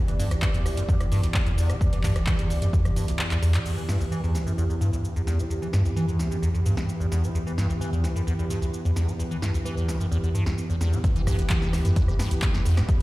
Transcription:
Already playing: analog synth pad E3 B3 G4 D5
0.08 acid bass E3, closed hi-hat, shaker
0.19 acid bass G2, open hi-hat, shaker
0.31 acid bass D2, cross-stick, closed hi-hat, shaker
0.42 acid bass E3, kick, clap, shaker
0.54 acid bass E2, closed hi-hat, shaker
0.66 acid bass D2, cross-stick, open hi-hat, shaker
0.77 acid bass F#2, closed hi-hat, shaker
0.89 acid bass E2, kick, shaker
1.00 acid bass E2, cross-stick, closed hi-hat, shaker
1.12 acid bass G2, open hi-hat, shaker
1.23 acid bass D2, closed hi-hat, shaker
1.34 kick, cross-stick, clap, shaker
1.46 acid bass E2, closed hi-hat, shaker
1.58 acid bass E2, open hi-hat, shaker
1.69 acid bass A2, cross-stick, closed hi-hat, shaker
1.81 acid bass E2, kick, shaker
1.93 acid bass E3, closed hi-hat, shaker
2.03 acid bass G2, kick, clap, open hi-hat, shaker
2.16 acid bass D2, cross-stick, closed hi-hat, shaker
2.27 acid bass E3, kick, clap, shaker
2.39 acid bass E2, closed hi-hat, shaker
2.50 acid bass D2, open hi-hat, shaker
2.62 acid bass F#2, closed hi-hat, shaker
2.73 acid bass E2, kick, shaker
2.85 acid bass E2, cross-stick, closed hi-hat, shaker
2.96 acid bass G2, open hi-hat, shaker
3.08 acid bass D2, closed hi-hat, shaker
3.19 cross-stick, clap, shaker
3.31 acid bass E2, clap, closed hi-hat, shaker
3.42 acid bass E2, open hi-hat, shaker
3.54 acid bass A2, clap, closed hi-hat, shaker
3.65 acid bass E2, analog synth pad E3 B3 G4 B4, crash, shaker
3.77 acid bass E3, shaker
3.89 acid bass G2, snare, shaker
4.00 acid bass D2, shaker
4.12 acid bass E3, shaker
4.23 acid bass E2, shaker
4.35 acid bass D2, snare, shaker
4.47 acid bass F#2, shaker
4.58 acid bass E2, shaker
4.70 acid bass E2, shaker
4.81 acid bass G2, shaker
4.93 acid bass D2, shaker
5.05 shaker
5.16 acid bass E2, shaker
5.27 acid bass E2, snare, shaker
5.39 acid bass A2, shaker
5.50 acid bass E2, shaker
5.62 acid bass E3, shaker
5.73 acid bass G2, snare, shaker
5.85 acid bass D2, shaker
5.96 acid bass E3, shaker
6.08 acid bass E2, shaker
6.19 acid bass D2, snare, shaker
6.31 acid bass F#2, shaker
6.42 acid bass E2, shaker
6.54 acid bass E2, shaker
6.66 acid bass G2, shaker
6.77 acid bass D2, snare, shaker
6.89 shaker
7.00 acid bass E2, shaker
7.12 acid bass E2, snare, shaker
7.23 acid bass A2, shaker
7.35 acid bass E2, shaker
7.47 acid bass E3, shaker
7.58 acid bass G2, snare, shaker
7.70 acid bass D2, shaker
7.81 acid bass E3, shaker
7.93 acid bass E2, shaker
8.04 acid bass D2, snare, shaker
8.16 acid bass F#2, shaker
8.27 acid bass E2, shaker
8.39 acid bass E2, shaker
8.50 acid bass G2, shaker
8.62 acid bass D2, shaker
8.74 shaker
8.85 acid bass E2, shaker
8.96 acid bass E2, snare, shaker
9.08 acid bass A2, shaker
9.19 acid bass E2, shaker
9.31 acid bass E3, shaker
9.42 acid bass G2, snare, shaker
9.54 acid bass D2, shaker
9.65 acid bass E3, shaker
9.77 acid bass E2, shaker
9.88 acid bass D2, snare, shaker
10.00 acid bass F#2, shaker
10.12 acid bass E2, shaker
10.23 acid bass E2, shaker
10.35 acid bass G2, shaker
10.46 acid bass D2, snare, shaker
10.58 shaker
10.70 acid bass E2, shaker
10.81 acid bass E2, snare, shaker
10.93 acid bass A2, shaker
11.04 acid bass E2, analog synth pad E3 B3 G4 B4, kick, closed hi-hat, shaker
11.16 acid bass E3, closed hi-hat, shaker
11.27 acid bass G2, kick, cross-stick, open hi-hat, shaker
11.39 acid bass D2, closed hi-hat, shaker
11.50 acid bass E3, kick, clap, closed hi-hat, shaker
11.62 acid bass E2, snare, shaker
11.73 acid bass D2, cross-stick, snare, open hi-hat, shaker
11.85 acid bass F#2, closed hi-hat, shaker
11.96 acid bass E2, kick, closed hi-hat, shaker
12.08 acid bass E2, cross-stick, shaker
12.19 acid bass G2, snare, open hi-hat, shaker
12.31 acid bass D2, closed hi-hat, shaker
12.42 kick, cross-stick, clap, closed hi-hat, shaker
12.54 acid bass E2, snare, shaker
12.65 acid bass E2, open hi-hat, shaker
12.77 acid bass A2, cross-stick, snare, closed hi-hat, shaker
12.89 acid bass E2, kick, closed hi-hat, shaker

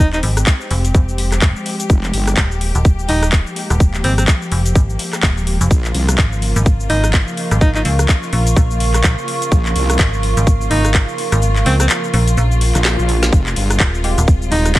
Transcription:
Already playing: fm bass D#1, string section F3 G#3 C4 G4
0.13 alto saxophone D#4, clap, shaker
0.23 fm bass G#1, open hi-hat
0.37 cross-stick, closed hi-hat, shaker
0.47 kick, clap, closed hi-hat, shaker
0.61 shaker
0.71 fm bass F1, open hi-hat
0.85 closed hi-hat, shaker
0.94 fm bass F1, kick, closed hi-hat, shaker
1.09 shaker
1.18 open hi-hat
1.32 cross-stick, clap, closed hi-hat, shaker
1.42 fm bass F1, kick, clap, closed hi-hat, shaker
1.56 shaker
1.66 open hi-hat
1.80 closed hi-hat, shaker
1.90 wobble bass F1, string section A#3, kick, closed hi-hat, shaker
2.03 clap, shaker
2.14 wobble bass G1, open hi-hat
2.27 cross-stick, closed hi-hat, shaker
2.37 fm bass D#1, kick, clap, closed hi-hat, shaker
2.51 shaker
2.61 open hi-hat
2.75 fm bass D#1, closed hi-hat, shaker
2.85 kick, closed hi-hat, shaker
2.99 shaker
3.09 fm bass D#1, alto saxophone D#4, open hi-hat
3.23 cross-stick, closed hi-hat, shaker
3.32 kick, clap, closed hi-hat, shaker
3.47 shaker
3.56 open hi-hat
3.70 fm bass D#1, cross-stick, closed hi-hat, shaker
3.80 kick, closed hi-hat, shaker
3.94 clap, shaker
4.04 fm bass G#1, alto saxophone C4, open hi-hat
4.18 alto saxophone C4, cross-stick, closed hi-hat, shaker
4.28 kick, clap, closed hi-hat, shaker
4.42 shaker
4.52 fm bass F1, open hi-hat
4.66 closed hi-hat, shaker
4.75 fm bass G#1, kick, closed hi-hat, shaker
4.90 shaker
4.99 open hi-hat
5.13 cross-stick, clap, closed hi-hat, shaker
5.23 fm bass D#1, kick, clap, closed hi-hat, shaker
5.37 shaker
5.47 open hi-hat
5.61 fm bass F1, closed hi-hat, shaker
5.71 wobble bass A#1, string section C#3 F4, ambient pad A#4, kick, closed hi-hat, shaker
5.85 clap, shaker
5.95 wobble bass C2, open hi-hat
6.09 cross-stick, closed hi-hat, shaker
6.18 fm bass G#1, kick, clap, closed hi-hat, shaker
6.26 ambient pad F5
6.33 shaker
6.42 open hi-hat
6.56 fm bass G#1, closed hi-hat, shaker
6.66 kick, closed hi-hat, shaker
6.80 shaker
6.90 fm bass G#1, alto saxophone D#4, open hi-hat
7.03 ambient pad C#6, cross-stick, closed hi-hat, shaker
7.13 kick, clap, closed hi-hat, shaker
7.28 shaker
7.37 open hi-hat
7.51 fm bass G#1, cross-stick, closed hi-hat, shaker
7.61 alto saxophone D#4, kick, closed hi-hat, shaker
7.75 alto saxophone D#4, clap, shaker
7.85 fm bass C#2, open hi-hat
7.99 cross-stick, closed hi-hat, shaker
8.09 kick, clap, closed hi-hat, shaker
8.23 shaker
8.33 fm bass A#1, open hi-hat
8.47 closed hi-hat, shaker
8.56 fm bass A#1, kick, closed hi-hat, shaker
8.71 shaker
8.80 open hi-hat
8.94 cross-stick, clap, closed hi-hat, shaker
9.04 fm bass A#1, kick, clap, closed hi-hat, shaker
9.18 shaker
9.28 open hi-hat
9.42 closed hi-hat, shaker
9.52 wobble bass A#1, kick, closed hi-hat, shaker
9.66 clap, shaker
9.76 wobble bass C2, open hi-hat
9.90 cross-stick, closed hi-hat, shaker
9.99 fm bass G#1, kick, clap, closed hi-hat, shaker
10.14 shaker
10.23 open hi-hat
10.37 fm bass G#1, closed hi-hat, shaker
10.47 kick, closed hi-hat, shaker
10.61 shaker
10.71 fm bass G#1, alto saxophone D#4, open hi-hat
10.85 cross-stick, closed hi-hat, shaker
10.94 kick, clap, closed hi-hat, shaker
11.09 shaker
11.18 open hi-hat
11.32 fm bass G#1, cross-stick, closed hi-hat, shaker
11.42 closed hi-hat, shaker
11.56 clap, shaker
11.66 fm bass C#2, alto saxophone C4, open hi-hat
11.80 alto saxophone C4, cross-stick, closed hi-hat, shaker
11.90 clap, closed hi-hat, shaker
12.04 shaker
12.14 fm bass A#1, open hi-hat
12.27 closed hi-hat, shaker
12.37 fm bass A#1, closed hi-hat, swell, shaker
12.52 shaker
12.61 open hi-hat
12.75 wobble bass A#1, cross-stick, clap, closed hi-hat, shaker
12.85 snare, clap, closed hi-hat, shaker
12.99 wobble bass A#1, shaker
13.09 open hi-hat
13.23 snare, closed hi-hat, shaker
13.32 wobble bass F1, string section C3 G3 G#3, ambient pad F4, kick, closed hi-hat, shaker
13.46 clap, shaker
13.56 wobble bass G1, open hi-hat
13.70 cross-stick, closed hi-hat, shaker
13.80 fm bass D#1, kick, clap, closed hi-hat, shaker
13.94 shaker
14.04 synth stab G#3 F4 G4, ambient pad C5, open hi-hat
14.18 fm bass D#1, closed hi-hat, shaker
14.28 kick, closed hi-hat, shaker
14.42 shaker
14.51 fm bass D#1, alto saxophone D#4, open hi-hat
14.65 cross-stick, closed hi-hat, shaker
14.75 kick, clap, closed hi-hat, shaker

